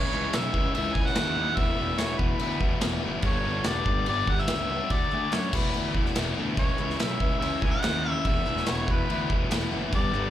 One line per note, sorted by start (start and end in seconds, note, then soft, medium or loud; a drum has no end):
0.00 0.11 C#3 medium
0.00 0.12 E3 medium
0.00 0.12 G#3 medium
0.00 0.12 C#4 medium
0.00 0.13 E4 loud
0.00 0.38 C#5 loud
0.12 0.27 C#2 medium
0.12 0.32 C#3 medium
0.12 0.33 E3 medium
0.12 0.33 G#3 medium
0.12 0.34 C#4 medium
0.12 0.34 E4 loud
0.12 clap medium
0.33 0.48 B1 medium
0.33 0.53 C#3 medium
0.33 0.54 E3 medium
0.33 0.54 G#3 medium
0.33 0.54 C#4 medium
0.33 0.56 E4 loud
0.33 0.74 E5 loud
0.33 snare loud
0.33 clap loud
0.33 crash medium
0.54 0.69 C#2 medium
0.54 0.73 C#3 medium
0.54 0.74 E3 medium
0.54 0.75 G#3 medium
0.54 0.75 C#4 medium
0.54 0.76 E4 medium
0.54 kick medium
0.75 0.91 C#2 loud
0.75 0.94 C#3 medium
0.75 0.95 E3 loud
0.75 0.95 G#3 loud
0.75 0.96 C#4 loud
0.75 0.96 E4 loud
0.75 0.97 E5 loud
0.75 crash medium
0.95 1.10 C#2 medium
0.95 1.16 C#3 medium
0.95 1.17 E3 medium
0.95 1.17 G#3 medium
0.95 1.18 C#4 medium
0.95 1.19 E4 medium
0.95 1.08 G#5 loud
0.95 kick medium
1.06 1.57 F#5 loud
1.06 snare soft
1.15 1.45 D#2 medium
1.15 1.35 C#3 medium
1.15 1.35 E3 medium
1.15 1.36 G#3 loud
1.15 1.36 C#4 medium
1.15 snare loud
1.15 clap medium
1.15 crash medium
1.20 1.37 E4 loud
1.36 1.56 C#3 medium
1.36 1.56 E3 medium
1.36 1.57 G#3 medium
1.36 1.57 C#4 medium
1.36 1.57 E4 medium
1.56 1.72 E1 loud
1.56 1.77 E2 medium
1.56 1.78 B2 medium
1.56 1.77 E3 loud
1.56 1.78 A3 loud
1.56 2.00 E5 loud
1.56 kick medium
1.56 crash medium
1.60 1.80 B3 medium
1.60 1.80 E4 loud
1.78 1.93 E1 medium
1.78 1.97 E2 medium
1.78 1.98 B2 medium
1.78 1.98 E3 medium
1.78 1.98 A3 medium
1.78 1.99 B3 medium
1.78 1.99 E4 medium
1.98 2.14 E1 medium
1.98 2.17 E2 medium
1.98 2.18 B2 medium
1.98 2.18 E3 loud
1.98 2.18 A3 medium
1.98 2.19 B3 medium
1.98 2.19 E4 medium
1.98 2.19 C#5 medium
1.98 snare medium
1.98 clap medium
1.98 crash medium
2.18 2.34 E1 medium
2.18 2.38 E2 medium
2.18 2.39 B2 medium
2.18 2.40 E3 loud
2.18 2.40 A3 loud
2.18 2.40 B3 loud
2.18 2.41 E4 medium
2.18 2.61 B4 medium
2.18 kick medium
2.39 2.55 D2 loud
2.39 2.57 E2 loud
2.39 2.58 B2 loud
2.39 2.59 E3 loud
2.39 2.59 A3 loud
2.39 2.60 B3 loud
2.39 2.60 E4 loud
2.39 crash medium
2.59 2.76 E1 loud
2.59 2.79 E2 medium
2.59 2.80 B2 medium
2.59 2.80 E3 medium
2.59 2.80 A3 medium
2.59 2.81 B3 medium
2.59 2.81 E4 medium
2.59 kick medium
2.80 2.97 E1 loud
2.80 3.00 E2 medium
2.80 3.01 B2 loud
2.80 3.02 E3 medium
2.80 3.01 A3 medium
2.80 3.02 B3 medium
2.80 3.02 E4 loud
2.80 snare loud
2.80 clap medium
2.80 crash medium
3.02 3.18 F#1 medium
3.02 3.22 E2 medium
3.02 3.22 B2 medium
3.02 3.23 E3 medium
3.02 3.23 A3 medium
3.02 3.23 B3 medium
3.02 3.23 E4 medium
3.22 3.38 G1 loud
3.22 3.43 G2 medium
3.22 3.44 D3 medium
3.22 3.45 G3 medium
3.22 3.44 B3 medium
3.22 3.45 D4 loud
3.22 3.45 G4 loud
3.22 kick loud
3.22 crash medium
3.26 3.70 C#5 loud
3.44 3.60 G1 medium
3.44 3.64 G2 medium
3.44 3.65 D3 medium
3.44 3.65 G3 medium
3.44 3.65 B3 medium
3.44 3.66 D4 medium
3.44 3.67 G4 medium
3.64 3.80 E1 medium
3.64 3.85 G2 medium
3.64 3.86 D3 medium
3.64 3.86 G3 medium
3.64 3.86 B3 medium
3.64 3.87 D4 loud
3.64 3.88 G4 medium
3.64 snare loud
3.64 clap medium
3.64 crash medium
3.68 4.08 D5 medium
3.86 4.00 G1 medium
3.86 4.06 G2 medium
3.86 4.07 D3 loud
3.86 4.07 G3 medium
3.86 4.08 B3 loud
3.86 4.08 D4 loud
3.86 4.09 G4 medium
3.86 kick loud
4.06 4.23 G1 loud
4.06 4.26 G2 loud
4.06 4.27 D3 loud
4.06 4.28 G3 loud
4.06 4.28 B3 loud
4.06 4.28 D4 loud
4.06 4.29 G4 loud
4.06 4.32 D5 loud
4.06 crash medium
4.27 4.42 G1 medium
4.27 4.48 G2 medium
4.27 4.49 D3 loud
4.27 4.50 G3 medium
4.27 4.50 B3 medium
4.27 4.50 D4 loud
4.27 4.51 G4 medium
4.27 4.42 F#5 loud
4.27 kick medium
4.38 4.94 E5 loud
4.38 snare soft
4.47 4.79 C#2 medium
4.47 4.68 G2 medium
4.47 4.68 D3 medium
4.47 4.69 G3 medium
4.47 4.69 B3 medium
4.47 4.70 D4 medium
4.47 snare loud
4.47 clap loud
4.47 crash medium
4.52 4.70 G4 loud
4.69 4.89 G2 medium
4.69 4.90 D3 medium
4.69 4.90 G3 medium
4.69 4.90 B3 loud
4.69 4.90 D4 medium
4.69 4.91 G4 medium
4.90 5.05 D2 medium
4.90 5.10 D3 medium
4.90 5.11 A3 loud
4.90 5.11 D4 medium
4.90 5.12 F#4 loud
4.90 5.36 D5 loud
4.90 kick loud
4.90 crash medium
5.11 5.27 D2 medium
5.11 5.31 D3 medium
5.11 5.31 A3 medium
5.11 5.31 D4 medium
5.11 5.32 F#4 medium
5.11 clap medium
5.32 5.48 F#2 medium
5.32 5.52 D3 loud
5.32 5.52 A3 medium
5.32 5.52 D4 medium
5.32 5.53 F#4 medium
5.32 5.57 C#5 loud
5.32 snare loud
5.32 clap medium
5.32 crash medium
5.52 5.68 E1 loud
5.52 5.72 E2 medium
5.52 5.72 B2 loud
5.52 5.73 E3 loud
5.52 5.73 A3 loud
5.52 5.74 B3 loud
5.52 5.75 E4 loud
5.52 kick loud
5.52 crash loud
5.56 5.97 B4 medium
5.73 5.90 D2 loud
5.73 5.93 E2 loud
5.73 5.93 B2 loud
5.73 5.95 E3 loud
5.73 5.94 A3 loud
5.73 5.96 B3 loud
5.73 5.95 E4 loud
5.73 crash medium
5.94 6.10 E1 medium
5.94 6.14 E2 medium
5.94 6.15 B2 medium
5.94 6.16 E3 loud
5.94 6.15 A3 medium
5.94 6.16 B3 medium
5.94 6.17 E4 medium
5.94 kick medium
6.05 snare soft
6.15 6.31 E1 medium
6.15 6.35 E2 medium
6.15 6.36 B2 medium
6.15 6.38 E3 medium
6.15 6.37 A3 loud
6.15 6.38 B3 medium
6.15 6.39 E4 loud
6.15 snare loud
6.15 clap loud
6.15 crash medium
6.36 6.52 D2 medium
6.36 6.57 E2 medium
6.36 6.55 B2 medium
6.36 6.56 E3 medium
6.36 6.56 A3 medium
6.36 6.57 B3 medium
6.36 6.58 E4 medium
6.56 6.72 C#2 medium
6.56 6.76 C#3 medium
6.56 6.78 E3 loud
6.56 6.77 G#3 medium
6.56 6.78 C#4 loud
6.56 6.79 E4 loud
6.56 7.01 C#5 medium
6.56 kick loud
6.56 crash medium
6.77 6.94 C#2 medium
6.77 6.97 C#3 medium
6.77 6.98 E3 medium
6.77 6.98 G#3 medium
6.77 6.98 C#4 medium
6.77 7.00 E4 medium
6.77 clap medium
6.90 snare soft
6.98 7.15 B1 medium
6.98 7.18 C#3 medium
6.98 7.20 E3 medium
6.98 7.19 G#3 medium
6.98 7.20 C#4 medium
6.98 7.21 E4 loud
6.98 7.39 E5 medium
6.98 snare loud
6.98 clap loud
6.98 crash medium
7.19 7.35 C#2 medium
7.19 7.39 C#3 medium
7.19 7.40 E3 medium
7.19 7.40 G#3 medium
7.19 7.40 C#4 loud
7.19 7.41 E4 medium
7.19 kick medium
7.40 7.56 C#2 loud
7.40 7.61 C#3 loud
7.40 7.61 E3 loud
7.40 7.62 G#3 loud
7.40 7.62 C#4 loud
7.40 7.63 E4 loud
7.40 7.64 E5 loud
7.40 crash medium
7.62 7.77 C#2 medium
7.62 7.81 C#3 medium
7.62 7.81 E3 medium
7.62 7.82 G#3 medium
7.62 7.82 C#4 loud
7.62 7.82 E4 loud
7.62 7.70 G#5 loud
7.62 kick medium
7.71 8.11 F#5 loud
7.82 8.13 D#2 medium
7.82 8.03 C#3 medium
7.82 8.04 E3 medium
7.82 8.04 G#3 medium
7.82 8.05 C#4 medium
7.82 8.05 E4 loud
7.82 snare loud
7.82 clap medium
7.82 crash medium
8.04 8.24 C#3 medium
8.04 8.24 E3 medium
8.04 8.25 G#3 medium
8.04 8.25 C#4 medium
8.04 8.25 E4 loud
8.11 8.26 E5 loud
8.25 8.40 E1 loud
8.25 8.45 E2 medium
8.25 8.44 B2 medium
8.25 8.45 E3 loud
8.25 8.46 A3 medium
8.25 8.47 B3 loud
8.25 8.46 E4 medium
8.25 8.68 E5 loud
8.25 kick loud
8.25 crash medium
8.46 8.61 E1 medium
8.46 8.65 E2 medium
8.46 8.66 B2 medium
8.46 8.66 E3 medium
8.46 8.66 A3 medium
8.46 8.68 B3 medium
8.46 8.68 E4 medium
8.46 clap medium
8.57 snare soft
8.66 8.83 E1 medium
8.66 8.86 E2 medium
8.66 8.88 B2 medium
8.66 8.87 E3 medium
8.66 8.88 A3 medium
8.66 8.90 B3 loud
8.66 8.88 E4 loud
8.66 8.93 C#5 loud
8.66 snare loud
8.66 clap medium
8.66 crash medium
8.87 9.02 E1 loud
8.87 9.08 E2 medium
8.87 9.08 B2 medium
8.87 9.09 E3 medium
8.87 9.09 A3 loud
8.87 9.10 B3 loud
8.87 9.10 E4 loud
8.87 kick loud
8.92 9.32 B4 medium
9.09 9.24 D2 medium
9.09 9.28 E2 loud
9.09 9.29 B2 loud
9.09 9.29 E3 loud
9.09 9.30 A3 loud
9.09 9.30 B3 loud
9.09 9.30 E4 loud
9.09 crash medium
9.29 9.45 E1 medium
9.29 9.49 E2 medium
9.29 9.50 B2 medium
9.29 9.51 E3 medium
9.29 9.51 A3 loud
9.29 9.51 B3 loud
9.29 9.51 E4 loud
9.29 kick medium
9.50 9.65 E1 medium
9.50 9.70 E2 medium
9.50 9.70 B2 medium
9.50 9.71 E3 medium
9.50 9.71 A3 medium
9.50 9.71 B3 medium
9.50 9.72 E4 loud
9.50 snare loud
9.50 clap medium
9.50 crash medium
9.71 9.86 F#1 medium
9.71 9.91 E2 medium
9.71 9.91 B2 medium
9.71 9.91 E3 medium
9.71 9.92 A3 medium
9.71 9.92 B3 medium
9.71 9.92 E4 medium
9.92 10.07 G1 loud
9.92 10.12 G2 medium
9.92 10.13 D3 medium
9.92 10.13 G3 loud
9.92 10.14 B3 medium
9.92 10.14 D4 loud
9.92 10.15 G4 loud
9.92 10.30 D5 loud
9.92 kick loud
9.92 crash medium
10.13 10.27 G1 loud
10.13 10.30 G2 medium
10.13 10.30 D3 medium
10.13 10.30 G3 medium
10.13 10.30 B3 medium
10.13 10.30 D4 medium
10.13 10.30 G4 medium
10.13 clap medium